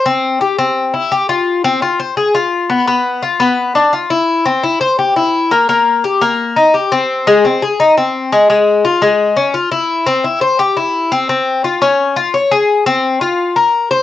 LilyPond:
\new Staff \with { instrumentName = "Cuban tres" } { \time 4/4 \key f \minor \tempo 4 = 171 c'4 g'8 c'4 e'8 g'8 f'8~ | f'8 c'8 f'8 c''8 aes'8 f'4 b8 | b4 f'8 b4 d'8 f'8 e'8~ | e'8 c'8 e'8 c''8 g'8 e'4 bes8 |
bes4 g'8 bes4 ees'8 g'8 c'8~ | c'8 aes8 c'8 aes'8 ees'8 c'4 aes8 | aes4 f'8 aes4 des'8 f'8 e'8~ | e'8 c'8 e'8 c''8 g'8 e'4 c'8 |
c'4 f'8 des'4 f'8 des''8 aes'8~ | aes'8 c'4 f'4 bes'4 c''8 | }